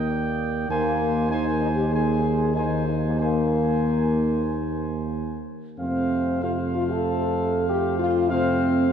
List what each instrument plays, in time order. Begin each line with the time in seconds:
Already playing: tuba D#2, trombone section D#3 A#3, french horn section A#3, trumpet section G5
0.09 trumpet section D5
0.69 tuba D#2, trombone section D#3 A#3, french horn section A#3, trumpet section C5 G#5
1.29 trombone section D#3 A#3, french horn section D#4, trumpet section C5 G#5
1.60 french horn section D#4
1.76 french horn section G4
1.91 trombone section D#3 A#3, french horn section G#4, trumpet section C5 G#5
2.54 trombone section D#3 A#3, french horn section D#4, trumpet section C5 G#5
2.87 french horn section D#4
3.04 french horn section A#3
3.18 trombone section D#3 A#3, french horn section A#3, trumpet section C5 G#5
5.78 tuba F2, trombone section C3 A3, french horn section C4, trumpet section C5 F5
6.41 trombone section C3 A3, french horn section F4, trumpet section C5 F5
6.75 french horn section F4
6.92 french horn section A4
7.68 french horn section G4
7.99 french horn section F4
8.29 trombone section C3 A3, french horn section C4, trumpet section C5 F5